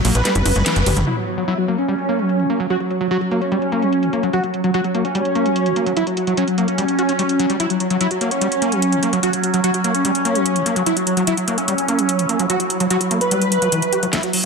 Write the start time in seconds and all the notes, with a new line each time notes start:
Already playing: F#3 B3
0.05 A#1 F#3 A#3, open hi-hat, ride
0.15 A#1 B4, closed hi-hat
0.25 G3, snare, closed hi-hat
0.35 F#1, closed hi-hat, high tom
0.46 F#1 F#3, open hi-hat, high tom, ride
0.56 F#1 F#3, closed hi-hat, mid tom
0.66 E3, snare, closed hi-hat
0.76 F#1, closed hi-hat
0.86 F#1 G4, mid tom, open hi-hat, ride
0.97 F#1 F#3, closed hi-hat, mid tom
1.07 F#3 C#4 E4, crash
1.17 F#3
1.27 F#3, closed hi-hat
1.37 F#3, closed hi-hat
1.48 F#3 E4, closed hi-hat
1.58 F#3, closed hi-hat
1.68 F#3 A#3, closed hi-hat
1.78 C#4, closed hi-hat
1.88 G3, closed hi-hat
1.99 closed hi-hat
2.09 A#3, closed hi-hat
2.19 F#3, closed hi-hat
2.29 closed hi-hat
2.39 E3, closed hi-hat
2.50 A#3, closed hi-hat
2.60 F#3, closed hi-hat
2.70 F#3 F#4, closed hi-hat
2.80 F#3, closed hi-hat
2.90 F#3, closed hi-hat
3.01 F#3, closed hi-hat
3.11 F#3 F#4, closed hi-hat
3.21 F#3, closed hi-hat
3.31 F#3 A#3, closed hi-hat
3.41 C#4, closed hi-hat
3.52 G3, closed hi-hat
3.62 closed hi-hat
3.72 A#3, closed hi-hat
3.82 F#3, closed hi-hat
3.93 closed hi-hat
4.03 E3, closed hi-hat
4.13 A#3, closed hi-hat
4.23 F#3, closed hi-hat
4.33 F#3 F#4, closed hi-hat
4.43 F#3, closed hi-hat
4.54 F#3, closed hi-hat
4.64 F#3, closed hi-hat
4.74 F#3 F#4, closed hi-hat
4.84 F#3, closed hi-hat
4.95 F#3 A#3, closed hi-hat
5.05 C#4, closed hi-hat
5.15 G3, closed hi-hat
5.25 closed hi-hat
5.35 A#3, closed hi-hat
5.46 F#3, closed hi-hat
5.56 closed hi-hat
5.66 E3, closed hi-hat
5.76 A#3, closed hi-hat
5.86 F#3, closed hi-hat
5.97 F#3 E4, closed hi-hat
6.07 F#3, closed hi-hat
6.17 F#3, closed hi-hat
6.27 F#3, closed hi-hat
6.37 F#3 C#4, closed hi-hat
6.48 F#3, closed hi-hat
6.58 F#3 A#3, closed hi-hat
6.68 C#4, closed hi-hat
6.78 G3, closed hi-hat
6.88 closed hi-hat
6.99 F#4, closed hi-hat
7.09 C#4, closed hi-hat
7.19 G3, closed hi-hat
7.29 closed hi-hat
7.39 F#3, closed hi-hat
7.50 G3, closed hi-hat
7.60 F#3 C#4 E4, closed hi-hat
7.70 F#3, closed hi-hat
7.80 F#3, closed hi-hat
7.90 F#3, closed hi-hat
8.01 F#3 E4, closed hi-hat
8.11 F#3, closed hi-hat
8.21 F#3 A#3, closed hi-hat
8.31 C#4, closed hi-hat
8.41 G3, closed hi-hat
8.52 closed hi-hat
8.62 A#3, closed hi-hat
8.72 F#3, closed hi-hat
8.82 closed hi-hat
8.92 E3, closed hi-hat
9.03 A#3, closed hi-hat
9.13 F#3, closed hi-hat
9.23 F#3 F#4, closed hi-hat
9.33 F#3, closed hi-hat
9.43 F#3, closed hi-hat
9.54 F#3, closed hi-hat
9.64 F#3 F#4, closed hi-hat
9.74 F#3, closed hi-hat
9.84 F#3 A#3, closed hi-hat
9.95 C#4, closed hi-hat
10.05 G3, closed hi-hat
10.15 closed hi-hat
10.25 A#3, closed hi-hat
10.35 F#3, closed hi-hat
10.46 closed hi-hat
10.56 E3, closed hi-hat
10.66 A#3, closed hi-hat
10.76 F#3, closed hi-hat
10.86 F#3 E4, closed hi-hat
10.97 F#3, closed hi-hat
11.07 F#3, closed hi-hat
11.17 F#3, closed hi-hat
11.27 F#3 E4, closed hi-hat
11.37 F#3, closed hi-hat
11.47 F#3 A#3, closed hi-hat
11.58 C#4, closed hi-hat
11.68 G3, closed hi-hat
11.78 closed hi-hat
11.88 A#3, closed hi-hat
11.99 F#3, closed hi-hat
12.09 closed hi-hat
12.19 E3, closed hi-hat
12.29 A#3, closed hi-hat
12.39 F#3, closed hi-hat
12.50 F#3 F#4, closed hi-hat
12.60 F#3, closed hi-hat
12.70 F#3, closed hi-hat
12.80 F#3, closed hi-hat
12.90 F#3 F#4, closed hi-hat
13.01 F#3, closed hi-hat
13.11 F#3 A#3, closed hi-hat
13.21 B4, closed hi-hat
13.31 G3, closed hi-hat
13.42 closed hi-hat
13.52 F#3, closed hi-hat
13.62 F#3, closed hi-hat
13.72 E3, closed hi-hat
13.82 closed hi-hat
13.93 G4, closed hi-hat
14.03 F#3, closed hi-hat
14.13 F#3 E4, kick, snare, closed hi-hat
14.23 F#3, closed hi-hat
14.33 F#3, open hi-hat